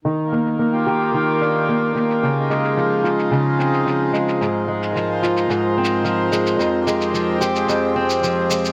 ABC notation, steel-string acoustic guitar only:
X:1
M:4/4
L:1/8
Q:1/4=110
K:Eb
V:1 name="Steel-string acoustic guitar" clef=bass
E, B, B, G E, D B, B, | _D, A, F, F D, C F, A, | A,, A, F, F A,, C F, A, | F,, A, F, G F,, C F, A, |]